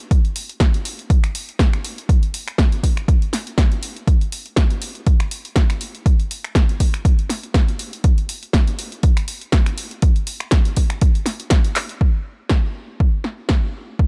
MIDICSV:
0, 0, Header, 1, 2, 480
1, 0, Start_track
1, 0, Tempo, 495868
1, 106, Time_signature, 4, 2, 24, 8
1, 13623, End_track
2, 0, Start_track
2, 0, Title_t, "Drums"
2, 107, Note_on_c, 9, 36, 120
2, 107, Note_on_c, 9, 42, 60
2, 203, Note_off_c, 9, 36, 0
2, 204, Note_off_c, 9, 42, 0
2, 240, Note_on_c, 9, 42, 36
2, 337, Note_off_c, 9, 42, 0
2, 346, Note_on_c, 9, 46, 106
2, 443, Note_off_c, 9, 46, 0
2, 478, Note_on_c, 9, 42, 36
2, 575, Note_off_c, 9, 42, 0
2, 581, Note_on_c, 9, 38, 116
2, 586, Note_on_c, 9, 36, 123
2, 586, Note_on_c, 9, 42, 60
2, 678, Note_off_c, 9, 38, 0
2, 683, Note_off_c, 9, 36, 0
2, 683, Note_off_c, 9, 42, 0
2, 718, Note_on_c, 9, 42, 38
2, 815, Note_off_c, 9, 42, 0
2, 825, Note_on_c, 9, 46, 114
2, 922, Note_off_c, 9, 46, 0
2, 959, Note_on_c, 9, 42, 36
2, 1055, Note_off_c, 9, 42, 0
2, 1065, Note_on_c, 9, 36, 120
2, 1065, Note_on_c, 9, 42, 59
2, 1162, Note_off_c, 9, 36, 0
2, 1162, Note_off_c, 9, 42, 0
2, 1197, Note_on_c, 9, 26, 62
2, 1197, Note_on_c, 9, 42, 38
2, 1294, Note_off_c, 9, 26, 0
2, 1294, Note_off_c, 9, 42, 0
2, 1306, Note_on_c, 9, 46, 104
2, 1403, Note_off_c, 9, 46, 0
2, 1440, Note_on_c, 9, 42, 35
2, 1537, Note_off_c, 9, 42, 0
2, 1542, Note_on_c, 9, 38, 119
2, 1545, Note_on_c, 9, 36, 116
2, 1547, Note_on_c, 9, 42, 63
2, 1639, Note_off_c, 9, 38, 0
2, 1642, Note_off_c, 9, 36, 0
2, 1644, Note_off_c, 9, 42, 0
2, 1679, Note_on_c, 9, 26, 64
2, 1679, Note_on_c, 9, 42, 35
2, 1776, Note_off_c, 9, 26, 0
2, 1776, Note_off_c, 9, 42, 0
2, 1786, Note_on_c, 9, 46, 102
2, 1883, Note_off_c, 9, 46, 0
2, 1918, Note_on_c, 9, 42, 36
2, 2015, Note_off_c, 9, 42, 0
2, 2024, Note_on_c, 9, 36, 120
2, 2027, Note_on_c, 9, 42, 61
2, 2121, Note_off_c, 9, 36, 0
2, 2124, Note_off_c, 9, 42, 0
2, 2157, Note_on_c, 9, 42, 34
2, 2253, Note_off_c, 9, 42, 0
2, 2265, Note_on_c, 9, 46, 102
2, 2362, Note_off_c, 9, 46, 0
2, 2397, Note_on_c, 9, 26, 65
2, 2397, Note_on_c, 9, 42, 35
2, 2494, Note_off_c, 9, 26, 0
2, 2494, Note_off_c, 9, 42, 0
2, 2501, Note_on_c, 9, 38, 107
2, 2504, Note_on_c, 9, 36, 117
2, 2506, Note_on_c, 9, 42, 61
2, 2598, Note_off_c, 9, 38, 0
2, 2601, Note_off_c, 9, 36, 0
2, 2603, Note_off_c, 9, 42, 0
2, 2636, Note_on_c, 9, 42, 36
2, 2733, Note_off_c, 9, 42, 0
2, 2744, Note_on_c, 9, 36, 64
2, 2746, Note_on_c, 9, 46, 107
2, 2841, Note_off_c, 9, 36, 0
2, 2842, Note_off_c, 9, 46, 0
2, 2877, Note_on_c, 9, 26, 61
2, 2877, Note_on_c, 9, 42, 36
2, 2974, Note_off_c, 9, 26, 0
2, 2974, Note_off_c, 9, 42, 0
2, 2984, Note_on_c, 9, 36, 114
2, 2988, Note_on_c, 9, 42, 56
2, 3081, Note_off_c, 9, 36, 0
2, 3085, Note_off_c, 9, 42, 0
2, 3118, Note_on_c, 9, 42, 37
2, 3215, Note_off_c, 9, 42, 0
2, 3223, Note_on_c, 9, 38, 56
2, 3228, Note_on_c, 9, 46, 103
2, 3319, Note_off_c, 9, 38, 0
2, 3325, Note_off_c, 9, 46, 0
2, 3358, Note_on_c, 9, 42, 35
2, 3455, Note_off_c, 9, 42, 0
2, 3462, Note_on_c, 9, 38, 120
2, 3464, Note_on_c, 9, 36, 118
2, 3468, Note_on_c, 9, 42, 61
2, 3559, Note_off_c, 9, 38, 0
2, 3561, Note_off_c, 9, 36, 0
2, 3564, Note_off_c, 9, 42, 0
2, 3598, Note_on_c, 9, 42, 35
2, 3695, Note_off_c, 9, 42, 0
2, 3704, Note_on_c, 9, 46, 103
2, 3801, Note_off_c, 9, 46, 0
2, 3838, Note_on_c, 9, 42, 36
2, 3935, Note_off_c, 9, 42, 0
2, 3944, Note_on_c, 9, 36, 119
2, 3945, Note_on_c, 9, 42, 59
2, 4041, Note_off_c, 9, 36, 0
2, 4042, Note_off_c, 9, 42, 0
2, 4079, Note_on_c, 9, 42, 38
2, 4176, Note_off_c, 9, 42, 0
2, 4185, Note_on_c, 9, 46, 98
2, 4282, Note_off_c, 9, 46, 0
2, 4314, Note_on_c, 9, 42, 35
2, 4411, Note_off_c, 9, 42, 0
2, 4418, Note_on_c, 9, 38, 107
2, 4423, Note_on_c, 9, 42, 59
2, 4425, Note_on_c, 9, 36, 111
2, 4515, Note_off_c, 9, 38, 0
2, 4520, Note_off_c, 9, 42, 0
2, 4522, Note_off_c, 9, 36, 0
2, 4554, Note_on_c, 9, 42, 36
2, 4651, Note_off_c, 9, 42, 0
2, 4662, Note_on_c, 9, 46, 101
2, 4759, Note_off_c, 9, 46, 0
2, 4793, Note_on_c, 9, 42, 35
2, 4890, Note_off_c, 9, 42, 0
2, 4903, Note_on_c, 9, 42, 58
2, 4904, Note_on_c, 9, 36, 120
2, 5000, Note_off_c, 9, 42, 0
2, 5001, Note_off_c, 9, 36, 0
2, 5034, Note_on_c, 9, 26, 63
2, 5034, Note_on_c, 9, 42, 36
2, 5131, Note_off_c, 9, 26, 0
2, 5131, Note_off_c, 9, 42, 0
2, 5143, Note_on_c, 9, 46, 102
2, 5240, Note_off_c, 9, 46, 0
2, 5275, Note_on_c, 9, 42, 36
2, 5372, Note_off_c, 9, 42, 0
2, 5378, Note_on_c, 9, 38, 106
2, 5384, Note_on_c, 9, 42, 62
2, 5385, Note_on_c, 9, 36, 116
2, 5475, Note_off_c, 9, 38, 0
2, 5480, Note_off_c, 9, 42, 0
2, 5481, Note_off_c, 9, 36, 0
2, 5516, Note_on_c, 9, 26, 65
2, 5516, Note_on_c, 9, 42, 36
2, 5613, Note_off_c, 9, 26, 0
2, 5613, Note_off_c, 9, 42, 0
2, 5622, Note_on_c, 9, 46, 97
2, 5719, Note_off_c, 9, 46, 0
2, 5756, Note_on_c, 9, 42, 38
2, 5853, Note_off_c, 9, 42, 0
2, 5864, Note_on_c, 9, 36, 115
2, 5865, Note_on_c, 9, 42, 62
2, 5961, Note_off_c, 9, 36, 0
2, 5962, Note_off_c, 9, 42, 0
2, 5998, Note_on_c, 9, 42, 38
2, 6095, Note_off_c, 9, 42, 0
2, 6107, Note_on_c, 9, 46, 99
2, 6204, Note_off_c, 9, 46, 0
2, 6238, Note_on_c, 9, 26, 65
2, 6238, Note_on_c, 9, 42, 36
2, 6335, Note_off_c, 9, 26, 0
2, 6335, Note_off_c, 9, 42, 0
2, 6341, Note_on_c, 9, 38, 107
2, 6344, Note_on_c, 9, 36, 111
2, 6346, Note_on_c, 9, 42, 63
2, 6438, Note_off_c, 9, 38, 0
2, 6441, Note_off_c, 9, 36, 0
2, 6443, Note_off_c, 9, 42, 0
2, 6478, Note_on_c, 9, 42, 38
2, 6575, Note_off_c, 9, 42, 0
2, 6584, Note_on_c, 9, 46, 102
2, 6585, Note_on_c, 9, 36, 61
2, 6681, Note_off_c, 9, 46, 0
2, 6682, Note_off_c, 9, 36, 0
2, 6718, Note_on_c, 9, 26, 63
2, 6718, Note_on_c, 9, 42, 38
2, 6814, Note_off_c, 9, 26, 0
2, 6814, Note_off_c, 9, 42, 0
2, 6824, Note_on_c, 9, 36, 106
2, 6826, Note_on_c, 9, 42, 63
2, 6921, Note_off_c, 9, 36, 0
2, 6923, Note_off_c, 9, 42, 0
2, 6958, Note_on_c, 9, 42, 36
2, 7055, Note_off_c, 9, 42, 0
2, 7062, Note_on_c, 9, 38, 54
2, 7067, Note_on_c, 9, 46, 95
2, 7159, Note_off_c, 9, 38, 0
2, 7164, Note_off_c, 9, 46, 0
2, 7197, Note_on_c, 9, 42, 35
2, 7293, Note_off_c, 9, 42, 0
2, 7302, Note_on_c, 9, 38, 113
2, 7305, Note_on_c, 9, 36, 110
2, 7307, Note_on_c, 9, 42, 64
2, 7399, Note_off_c, 9, 38, 0
2, 7401, Note_off_c, 9, 36, 0
2, 7404, Note_off_c, 9, 42, 0
2, 7439, Note_on_c, 9, 42, 39
2, 7536, Note_off_c, 9, 42, 0
2, 7543, Note_on_c, 9, 46, 96
2, 7640, Note_off_c, 9, 46, 0
2, 7677, Note_on_c, 9, 42, 39
2, 7774, Note_off_c, 9, 42, 0
2, 7783, Note_on_c, 9, 42, 64
2, 7785, Note_on_c, 9, 36, 107
2, 7880, Note_off_c, 9, 42, 0
2, 7881, Note_off_c, 9, 36, 0
2, 7917, Note_on_c, 9, 42, 40
2, 8014, Note_off_c, 9, 42, 0
2, 8025, Note_on_c, 9, 46, 100
2, 8122, Note_off_c, 9, 46, 0
2, 8157, Note_on_c, 9, 42, 39
2, 8254, Note_off_c, 9, 42, 0
2, 8261, Note_on_c, 9, 38, 108
2, 8265, Note_on_c, 9, 36, 111
2, 8266, Note_on_c, 9, 42, 65
2, 8358, Note_off_c, 9, 38, 0
2, 8362, Note_off_c, 9, 36, 0
2, 8363, Note_off_c, 9, 42, 0
2, 8397, Note_on_c, 9, 42, 39
2, 8494, Note_off_c, 9, 42, 0
2, 8505, Note_on_c, 9, 46, 100
2, 8602, Note_off_c, 9, 46, 0
2, 8636, Note_on_c, 9, 42, 39
2, 8733, Note_off_c, 9, 42, 0
2, 8743, Note_on_c, 9, 42, 64
2, 8745, Note_on_c, 9, 36, 110
2, 8840, Note_off_c, 9, 42, 0
2, 8842, Note_off_c, 9, 36, 0
2, 8876, Note_on_c, 9, 26, 66
2, 8876, Note_on_c, 9, 42, 42
2, 8972, Note_off_c, 9, 26, 0
2, 8972, Note_off_c, 9, 42, 0
2, 8981, Note_on_c, 9, 46, 92
2, 9078, Note_off_c, 9, 46, 0
2, 9113, Note_on_c, 9, 42, 39
2, 9210, Note_off_c, 9, 42, 0
2, 9218, Note_on_c, 9, 38, 111
2, 9224, Note_on_c, 9, 42, 67
2, 9225, Note_on_c, 9, 36, 108
2, 9315, Note_off_c, 9, 38, 0
2, 9320, Note_off_c, 9, 42, 0
2, 9321, Note_off_c, 9, 36, 0
2, 9355, Note_on_c, 9, 26, 63
2, 9355, Note_on_c, 9, 42, 40
2, 9451, Note_off_c, 9, 26, 0
2, 9451, Note_off_c, 9, 42, 0
2, 9463, Note_on_c, 9, 46, 97
2, 9560, Note_off_c, 9, 46, 0
2, 9595, Note_on_c, 9, 42, 38
2, 9691, Note_off_c, 9, 42, 0
2, 9702, Note_on_c, 9, 42, 66
2, 9705, Note_on_c, 9, 36, 116
2, 9799, Note_off_c, 9, 42, 0
2, 9802, Note_off_c, 9, 36, 0
2, 9834, Note_on_c, 9, 42, 41
2, 9930, Note_off_c, 9, 42, 0
2, 9940, Note_on_c, 9, 46, 100
2, 10037, Note_off_c, 9, 46, 0
2, 10071, Note_on_c, 9, 26, 63
2, 10071, Note_on_c, 9, 42, 39
2, 10167, Note_off_c, 9, 26, 0
2, 10167, Note_off_c, 9, 42, 0
2, 10175, Note_on_c, 9, 38, 114
2, 10180, Note_on_c, 9, 42, 63
2, 10185, Note_on_c, 9, 36, 115
2, 10272, Note_off_c, 9, 38, 0
2, 10277, Note_off_c, 9, 42, 0
2, 10282, Note_off_c, 9, 36, 0
2, 10312, Note_on_c, 9, 42, 40
2, 10409, Note_off_c, 9, 42, 0
2, 10420, Note_on_c, 9, 46, 107
2, 10425, Note_on_c, 9, 36, 57
2, 10517, Note_off_c, 9, 46, 0
2, 10522, Note_off_c, 9, 36, 0
2, 10551, Note_on_c, 9, 26, 64
2, 10551, Note_on_c, 9, 42, 40
2, 10648, Note_off_c, 9, 26, 0
2, 10648, Note_off_c, 9, 42, 0
2, 10662, Note_on_c, 9, 42, 62
2, 10665, Note_on_c, 9, 36, 106
2, 10759, Note_off_c, 9, 42, 0
2, 10762, Note_off_c, 9, 36, 0
2, 10795, Note_on_c, 9, 42, 41
2, 10892, Note_off_c, 9, 42, 0
2, 10897, Note_on_c, 9, 38, 59
2, 10902, Note_on_c, 9, 46, 96
2, 10993, Note_off_c, 9, 38, 0
2, 10999, Note_off_c, 9, 46, 0
2, 11032, Note_on_c, 9, 42, 40
2, 11129, Note_off_c, 9, 42, 0
2, 11134, Note_on_c, 9, 38, 122
2, 11139, Note_on_c, 9, 42, 70
2, 11145, Note_on_c, 9, 36, 108
2, 11231, Note_off_c, 9, 38, 0
2, 11236, Note_off_c, 9, 42, 0
2, 11242, Note_off_c, 9, 36, 0
2, 11272, Note_on_c, 9, 42, 40
2, 11369, Note_off_c, 9, 42, 0
2, 11381, Note_on_c, 9, 39, 87
2, 11381, Note_on_c, 9, 46, 98
2, 11478, Note_off_c, 9, 39, 0
2, 11478, Note_off_c, 9, 46, 0
2, 11513, Note_on_c, 9, 42, 41
2, 11610, Note_off_c, 9, 42, 0
2, 11625, Note_on_c, 9, 36, 104
2, 11722, Note_off_c, 9, 36, 0
2, 12095, Note_on_c, 9, 38, 106
2, 12105, Note_on_c, 9, 36, 100
2, 12192, Note_off_c, 9, 38, 0
2, 12202, Note_off_c, 9, 36, 0
2, 12586, Note_on_c, 9, 36, 102
2, 12683, Note_off_c, 9, 36, 0
2, 12818, Note_on_c, 9, 38, 53
2, 12915, Note_off_c, 9, 38, 0
2, 13056, Note_on_c, 9, 38, 116
2, 13066, Note_on_c, 9, 36, 103
2, 13153, Note_off_c, 9, 38, 0
2, 13163, Note_off_c, 9, 36, 0
2, 13546, Note_on_c, 9, 36, 110
2, 13623, Note_off_c, 9, 36, 0
2, 13623, End_track
0, 0, End_of_file